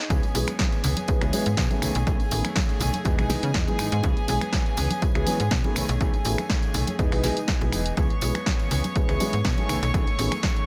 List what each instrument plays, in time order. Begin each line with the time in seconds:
0.00 clean electric guitar D#4
0.09 fm bass C#2, clean electric guitar E3 B3 C#4 G#4, grand piano E3 G#3 B3 C#4 G#4, string section G#4 G#5, kick, closed hi-hat, tambourine, high conga
0.22 clean electric guitar B3 C#4 G#4, closed hi-hat, tambourine
0.34 fm bass B1, grand piano E3 G#3 B3 C#4 G#4, open hi-hat, tambourine
0.47 clean electric guitar B3 C#4 G#4, finger snap, closed hi-hat, tambourine, high conga
0.59 clean electric guitar E3 B3 C#4 G#4, kick, snare, closed hi-hat, tambourine
0.72 closed hi-hat, tambourine
0.83 fm bass C#2, clean electric guitar E3 B3 C#4 G#4, open hi-hat, tambourine, low conga
0.96 clean electric guitar B3 C#4 G#4, closed hi-hat, tambourine, high conga
1.08 fm bass C#2, grand piano E3 G#3 B3 C#4 G#4, kick, closed hi-hat, tambourine
1.21 fm bass C#2, grand piano E3 G#3 B3 C#4 G#4, clean electric guitar B3 C#4 G#4, finger snap, closed hi-hat, tambourine
1.32 clean electric guitar E3 B3 C#4 G#4, grand piano E3 G#3 B3 C#4 G#4, open hi-hat, tambourine, high conga
1.45 fm bass G#2, clean electric guitar B3 C#4 G#4, closed hi-hat, tambourine
1.57 fm bass B2, clean electric guitar E3 B3 C#4 G#4, kick, snare, closed hi-hat, tambourine
1.70 grand piano D#3 A3 B3 C#4 G#4, clean electric guitar B3 C#4 G#4, closed hi-hat, tambourine, high conga
1.81 fm bass B1, clean electric guitar D#3 A3 C#4 G#4, finger snap, open hi-hat, tambourine, low conga
1.94 fm bass B1, closed hi-hat, tambourine
2.06 fm bass B1, clean electric guitar D#3 A3 C#4 G#4, grand piano D#3 A3 B3 C#4 G#4, kick, closed hi-hat, tambourine, high conga
2.19 clean electric guitar A3 C#4 G#4, closed hi-hat, tambourine
2.31 fm bass A1, grand piano D#3 A3 B3 C#4 G#4, open hi-hat, tambourine
2.44 clean electric guitar A3 C#4 G#4, finger snap, closed hi-hat, tambourine, high conga
2.56 clean electric guitar D#3 A3 C#4 G#4, kick, snare, closed hi-hat, tambourine
2.69 closed hi-hat, tambourine
2.80 fm bass B1, clean electric guitar D#3 A3 C#4 G#4, open hi-hat, tambourine, low conga
2.93 clean electric guitar A3 C#4 G#4, closed hi-hat, tambourine, high conga
3.05 fm bass E2, clean electric guitar D#3 B3 D#4 G#4, grand piano E3 G#3 B3 D#4 G#4, kick, closed hi-hat, tambourine
3.17 fm bass B1, grand piano E3 G#3 B3 D#4 G#4, clean electric guitar B3 D#4 G#4, finger snap, closed hi-hat, tambourine
3.29 clean electric guitar D#3 B3 D#4 G#4, grand piano E3 G#3 B3 D#4 G#4, snare, open hi-hat, tambourine, high conga, low conga
3.42 fm bass C#3, clean electric guitar B3 D#4 G#4, closed hi-hat, tambourine
3.54 fm bass E2, clean electric guitar D#3 B3 D#4 G#4, kick, snare, closed hi-hat, tambourine
3.67 grand piano E3 G#3 B3 D#4 G#4, clean electric guitar B3 D#4 G#4, closed hi-hat, tambourine, high conga
3.78 fm bass G#2, clean electric guitar D#3 B3 D#4 G#4, finger snap, open hi-hat, tambourine
3.92 fm bass G#2, closed hi-hat, tambourine
4.03 fm bass C#2, clean electric guitar E3 B3 C#4 G#4, grand piano E3 G#3 B3 C#4 G#4, kick, closed hi-hat, tambourine, high conga
4.16 clean electric guitar B3 C#4 G#4, closed hi-hat, tambourine
4.27 fm bass B1, grand piano E3 G#3 B3 C#4 G#4, open hi-hat, tambourine
4.40 clean electric guitar B3 C#4 G#4, finger snap, closed hi-hat, tambourine, high conga
4.52 clean electric guitar E3 B3 C#4 G#4, kick, snare, closed hi-hat, tambourine
4.66 closed hi-hat, tambourine
4.77 fm bass C#2, clean electric guitar E3 B3 C#4 G#4, open hi-hat, tambourine, low conga
4.90 clean electric guitar B3 C#4 G#4, closed hi-hat, tambourine, high conga
5.02 fm bass C#2, grand piano E3 G#3 B3 C#4 G#4, kick, closed hi-hat, tambourine
5.14 fm bass C#2, grand piano E3 G#3 B3 C#4 G#4, clean electric guitar B3 C#4 G#4, finger snap, closed hi-hat, tambourine
5.26 clean electric guitar E3 B3 C#4 G#4, grand piano E3 G#3 B3 C#4 G#4, open hi-hat, tambourine, high conga
5.39 fm bass G#2, clean electric guitar B3 C#4 G#4, closed hi-hat, tambourine
5.51 fm bass B2, clean electric guitar E3 B3 C#4 G#4, kick, snare, closed hi-hat, tambourine
5.64 grand piano D#3 A3 B3 C#4 G#4, clean electric guitar B3 C#4 G#4, closed hi-hat, tambourine, high conga
5.75 fm bass B1, clean electric guitar D#3 A3 C#4 G#4, finger snap, open hi-hat, tambourine, low conga
5.89 fm bass B1, closed hi-hat, tambourine
6.00 fm bass B1, clean electric guitar D#3 A3 C#4 G#4, grand piano D#3 A3 B3 C#4 G#4, kick, closed hi-hat, tambourine, high conga
6.13 clean electric guitar A3 C#4 G#4, closed hi-hat, tambourine
6.25 fm bass A1, grand piano D#3 A3 B3 C#4 G#4, open hi-hat, tambourine
6.38 clean electric guitar A3 C#4 G#4, finger snap, closed hi-hat, tambourine, high conga
6.50 clean electric guitar D#3 A3 C#4 G#4, kick, snare, closed hi-hat, tambourine
6.62 closed hi-hat, tambourine
6.73 fm bass B1, clean electric guitar D#3 A3 C#4 G#4, open hi-hat, tambourine, low conga
6.87 clean electric guitar A3 C#4 G#4, closed hi-hat, tambourine, high conga
6.99 fm bass E2, clean electric guitar E3 B3 D#4 G#4, grand piano E3 G#3 B3 D#4 G#4, kick, closed hi-hat, tambourine
7.12 fm bass B1, grand piano E3 G#3 B3 D#4 G#4, clean electric guitar B3 D#4 G#4, finger snap, open hi-hat, tambourine
7.23 grand piano E3 G#3 B3 D#4 G#4, clean electric guitar E3 B3 D#4 G#4, snare, open hi-hat, tambourine, high conga, low conga
7.36 clean electric guitar B3 D#4 G#4, closed hi-hat, tambourine
7.48 clean electric guitar E3 B3 D#4 G#4, kick, snare, closed hi-hat, tambourine
7.61 fm bass B1, grand piano E3 G#3 B3 D#4 G#4, clean electric guitar B3 D#4 G#4, closed hi-hat, tambourine, high conga
7.72 fm bass E1, clean electric guitar E3 B3 D#4 G#4, finger snap, open hi-hat, tambourine
7.86 closed hi-hat
7.97 fm bass C#2, grand piano E3 G#3 B3 C#4 G#4, clean electric guitar E3 B3 C#4 G#4, string section C#5 C#6, kick, closed hi-hat, tambourine, high conga
8.10 clean electric guitar B3 C#4 G#4, closed hi-hat, tambourine
8.21 fm bass B1, grand piano E3 G#3 B3 C#4 G#4, open hi-hat, tambourine
8.35 clean electric guitar B3 C#4 G#4, finger snap, closed hi-hat, tambourine, high conga
8.46 clean electric guitar E3 B3 C#4 G#4, kick, snare, closed hi-hat, tambourine
8.59 closed hi-hat, tambourine
8.71 fm bass C#2, clean electric guitar E3 B3 C#4 G#4, open hi-hat, tambourine, low conga
8.83 clean electric guitar B3 C#4 G#4, closed hi-hat, tambourine, high conga
8.95 fm bass C#2, grand piano E3 G#3 B3 C#4 G#4, kick, closed hi-hat, tambourine
9.08 fm bass C#2, grand piano E3 G#3 B3 C#4 G#4, clean electric guitar B3 C#4 G#4, finger snap, closed hi-hat, tambourine
9.20 clean electric guitar E3 B3 C#4 G#4, grand piano E3 G#3 B3 C#4 G#4, open hi-hat, tambourine, high conga
9.33 fm bass G#2, clean electric guitar B3 C#4 G#4, closed hi-hat, tambourine
9.44 fm bass B2, clean electric guitar E3 B3 C#4 G#4, kick, snare, closed hi-hat, tambourine
9.57 grand piano D#3 A3 B3 C#4 G#4, closed hi-hat, tambourine, high conga
9.69 fm bass B1, clean electric guitar D#3 A3 C#4 G#4, finger snap, open hi-hat, tambourine, low conga
9.82 fm bass B1, closed hi-hat, tambourine
9.93 fm bass B1, clean electric guitar D#3 A3 C#4 G#4, grand piano D#3 A3 B3 C#4 G#4, kick, closed hi-hat, tambourine, high conga
10.06 clean electric guitar A3 C#4 G#4, closed hi-hat, tambourine
10.18 fm bass A1, grand piano D#3 A3 B3 C#4 G#4, open hi-hat, tambourine
10.31 clean electric guitar A3 C#4 G#4, finger snap, closed hi-hat, tambourine, high conga
10.43 clean electric guitar D#3 A3 C#4 G#4, kick, snare, closed hi-hat, tambourine
10.56 closed hi-hat, tambourine